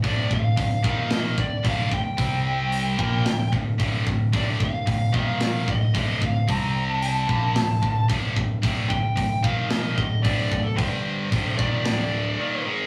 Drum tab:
HH |o-o-o-o-|o-o-o-o-|o-o-o-o-|o-o-o-o-|
SD |----o---|----o---|----o---|----o---|
BD |oooo-ooo|o--o-ooo|oooo-ooo|o--o-ooo|

HH |o-o-o-o-|o-o-o---|
SD |----o---|----o---|
BD |oooo-ooo|o-oo----|